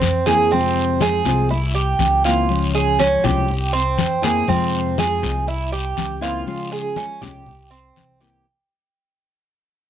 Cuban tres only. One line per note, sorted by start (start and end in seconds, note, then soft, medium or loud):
0.00 0.25 C4 medium
0.26 0.50 G#4 medium
0.51 1.00 C4 medium
1.02 1.50 G#4 medium
1.50 1.74 E4 medium
1.75 2.23 G4 medium
2.25 2.73 F4 medium
2.75 2.99 G#4 medium
3.00 3.24 C#4 medium
3.24 3.72 G4 medium
3.73 4.22 C4 medium
4.23 4.48 G#4 medium
4.49 4.97 C4 medium
4.99 5.47 G#4 medium
5.48 5.72 E4 medium
5.72 6.21 G4 medium
6.22 6.70 F4 medium
6.72 6.96 G#4 medium
6.97 7.21 C#4 medium
7.21 7.70 G4 medium
7.71 8.19 C4 medium
8.20 8.45 G4 medium